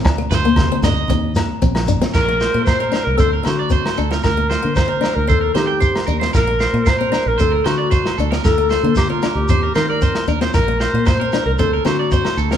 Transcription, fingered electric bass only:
\new Staff \with { instrumentName = "Fingered electric bass" } { \clef bass \time 4/4 \key bes \major \tempo 4 = 114 d,8 d,4 d,8 ees,4 bes,,4 | bes,,8. bes,4 c,16 d,8 d4 d,8 | d,8. d4 d,16 ees,8 ees4 ees,8 | bes,,8. bes,4 bes,,16 d,8 d4 d,8 |
d,8. d4 d,16 ees,8 ees4 ees,8 | bes,,8. bes,4 c,16 d,8 d4 d,8 | }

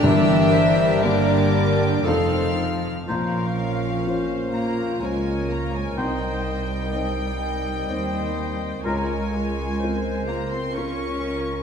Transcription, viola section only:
\new Staff \with { instrumentName = "Viola section" } { \time 3/4 \key g \dorian \tempo 4 = 62 << { d'2 ees'4 | \key bes \dorian des'2 bes'4 | c''4 ees''2 | des''4 c''4 bes'8 bes'8 | } \\ { g2 c'4 | bes'4 c''4 des''4 | ees''4 ees''4 c''4 | bes'8 f'4. f'4 | } >> }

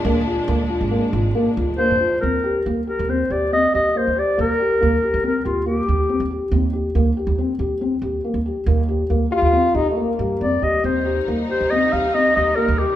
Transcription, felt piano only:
\new Staff \with { instrumentName = "Felt piano" } { \time 5/4 \key ees \major \tempo 4 = 139 bes8 f'8 bes8 f'8 bes8 f'8 bes8 f'8 bes8 f'8 | c'8 g'8 bes8 g'8 c'8 g'8 c'8 g'8 bes8 g'8 | bes8 g'8 bes8 g'8 c'8 g'8 bes8 g'8 c'8 g'8 | c'8 g'8 bes8 g'8 c'8 g'8 c'8 g'8 bes8 g'8 |
bes8 g'8 bes8 g'8 c'8 g'8 bes8 g'8 c'8 g'8 | c'8 g'8 bes8 g'8 c'8 g'8 c'8 g'8 bes8 g'8 | }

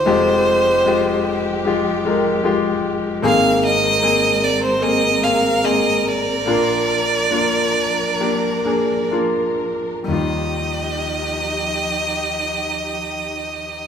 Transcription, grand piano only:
<<
  \new Staff \with { instrumentName = "Grand piano" } { \time 4/4 \key ees \major \tempo 4 = 72 <aes f' g'>4 <aes f' g'>4 <aes f' g'>8 <aes f' bes'>8 <aes f' g'>4 | <bes c' aes'>4 <bes c' aes'>4 <bes c' aes'>8 <bes c' aes'>8 <bes c' aes'>4 | <bes d' f'>4 <bes d' f'>4 <bes d' g'>8 <bes d' aes'>8 <bes d' f'>4 | <g ees' f'>1 | }
  \new Staff \with { instrumentName = "Grand piano" } { \clef bass \time 4/4 \key ees \major <f,, f,>1 | <aes,, aes,>1 | <bes,, bes,>1 | ees,1 | }
>>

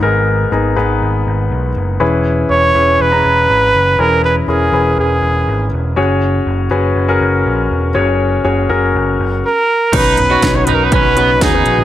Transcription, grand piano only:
<<
  \new Staff \with { instrumentName = "Grand piano" } { \time 4/4 \key e \lydian \tempo 4 = 121 <b dis' gis' ais'>4 <b dis' gis' ais'>8 <b dis' gis' b'>4.~ <b dis' gis' b'>16 r8. | <cis' e' gis' b'>4. <cis' e' gis' b'>8. <cis' e' gis' ais''>4.~ <cis' e' gis' ais''>16 | <cis' e' gis' b'>4 <cis' e' gis' ais'>8 <cis' e' gis' b'>4.~ <cis' e' gis' b'>16 r8. | <cis' fis' gis' cis''>4. <cis' fis' gis' b'>8. <cis' fis' gis' ais'>4.~ <cis' fis' gis' ais'>16 |
<cis' fis' gis' cis''>4 <cis' fis' gis' cis''>8 <cis' fis' gis' ais'>4. r4 | <cis' dis' fis' b'>8. <cis' dis' fis' cis''>8 <cis' dis' fis' b'>4~ <cis' dis' fis' b'>16 <cis' dis' fis' b'>8. <cis' dis' fis' b'>8. | }
  \new Staff \with { instrumentName = "Grand piano" } { \clef bass \time 4/4 \key e \lydian gis,4 r2. | e4. r2 r8 | e4. r2 r8 | r1 |
r1 | b,4. r2 r8 | }
>>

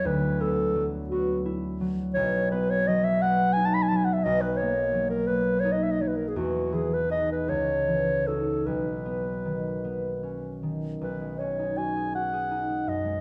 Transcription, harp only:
\new Staff \with { instrumentName = "Harp" } { \time 6/8 \key d \lydian \tempo 4. = 56 <d, fis b e'>8 b8 fis8 b8 e'8 fis8 | \key b \major b,,8 b8 fis8 b8 dis'8 fis8 | b,,8 ais8 fis8 ais8 dis'8 fis8 | e,8 e8 <dis' gis'>8 cis,8 e8 <dis' fis'>8 |
b,,8 b8 dis8 b8 cis'8 dis8 | b,,16 gis16 cis'16 dis'16 fis'16 gis'16 fis'16 gis'16 dis'16 gis16 fis,16 gis16 | }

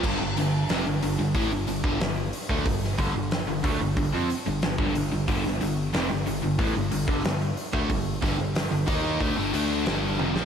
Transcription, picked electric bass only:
\new Staff \with { instrumentName = "Picked electric bass" } { \clef bass \time 4/4 \key g \minor \tempo 4 = 92 g,,16 g,,16 g,,8 f,,16 g,,16 g,,16 g,,16 a,,16 g,,16 g,,16 g,,16 g,,8 r16 d,16 | g,,8 g,,16 g,,8 g,,16 d,16 g,,16 g,,16 f,16 r16 g,,16 g,,16 g,,16 g,,16 g,,16 | g,,16 g,,16 g,,8 f,,16 g,,16 g,,16 g,,16 a,,16 g,,16 g,,16 g,,16 g,,8 r16 d,16 | g,,8 g,,16 g,,8 g,,16 ees,8 d,16 g,,16 d,8 g,,8 f,,16 bes,,16 | }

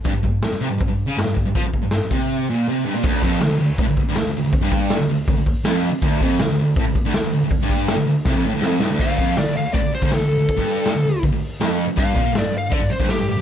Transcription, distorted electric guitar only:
\new Staff \with { instrumentName = "Distorted electric guitar" } { \clef bass \time 4/4 \key g \lydian \tempo 4 = 161 g,16 g,16 g,8 r8 c16 g,16 g,16 g,8 cis16 g,16 g,16 g,16 g,16 | f16 g,8 g,8 g,16 c4 bes,8 c8 g,16 bes,16 | d,8 f,8 d,16 d,16 d,8 a,16 d,16 r16 d,16 d,16 d,16 d,16 d,16~ | d,16 g,4 d,16 d,8 d,16 d,8 r16 f,8. r16 |
d,8 f,8 d,16 d,16 d,8 a,16 d,16 r16 d,16 d,16 d,16 d,16 d,16~ | d,16 g,4 d,16 d,8 c16 f,16 a,16 d,16 f,8 g,16 d,16 | d,8 f,8 d,16 d,16 d,8 a,16 d,16 r16 d,16 d,16 d,16 d,16 d,16~ | d,16 g,4 d,16 d,8 d,16 d,8 r16 f,8. r16 |
g,8 bes,8 g,16 g,16 g,8 d16 g,16 r16 g,16 g,16 g,16 g,16 g,16 | }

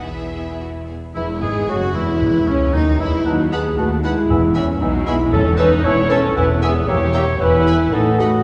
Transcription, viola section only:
\new Staff \with { instrumentName = "Viola section" } { \time 2/4 \key e \major \tempo 4 = 115 <b e'>4. r8 | gis8 b8 a8 gis8~ | gis8 e8 fis8 gis8 | fis8 b8 a8 gis8~ |
gis8 e8 fis8 gis8 | cis'8 dis'8 e'8 cis'8 | e'8 b8 g'4 | e'4 dis'8 a8 | }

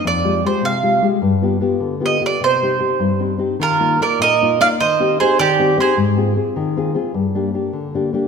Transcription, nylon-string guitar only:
\new Staff \with { instrumentName = "Nylon-string guitar" } { \time 6/8 \key c \minor \tempo 4. = 102 f,8 <aes f' g'>8 <aes f' g'>8 c8 <aes f' g'>8 <aes f' g'>8 | g,8 <b f' g'>8 <b f' g'>8 d8 <b f' g'>8 <b f' g'>8 | c8 <c' ees' g'>8 <c' ees' g'>8 g,8 <c' ees' g'>8 <c' ees' g'>8 | \key ees \major ees8 <bes ees' f'>8 <bes ees' f'>8 bes,8 <bes ees' f'>8 <bes ees' f'>8 |
ees8 <c' ees' g'>8 <c' ees' g'>8 ees8 <c' ees' g'>8 <c' ees' g'>8 | aes,8 <c' f' aes'>8 <c' f' aes'>8 ees8 <c' f' aes'>8 <c' f' aes'>8 | g,8 <bes d' g'>8 <bes d' g'>8 d8 <bes d' g'>8 <bes d' g'>8 | }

